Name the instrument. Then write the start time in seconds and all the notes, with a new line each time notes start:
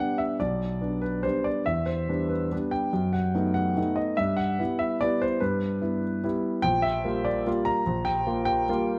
grand piano
Already playing: F#5
0.00 G3 B3 D4
0.18 E5
0.40 B1 D5
0.81 B3 D4
1.01 B4
1.23 G3 B3 D4 C5
1.44 D5
1.66 E2 E5
1.86 C5
2.08 G3 B3 D4
2.29 B4
2.51 G3 B3 D4
2.71 G5
2.93 F#2
3.13 F#5
3.34 A3 B3 D#4
3.54 F#5
3.77 A3 B3 D#4
3.96 D#5
4.17 G2 E5
4.37 F#5
4.59 G3 B3 E4
4.79 E5
5.01 G3 B3 E4 D5
5.22 C5
5.40 G2 B4
5.82 B3 E4
6.23 G3 B3 E4
6.62 A#1 G5
6.82 E5
7.04 G3 A#3 F4
7.25 D5
7.46 G3 A#3 F4
7.65 A#5
7.86 A#1
8.05 G5
8.27 A#3 F4
8.45 G5
8.68 G3 A#3 F4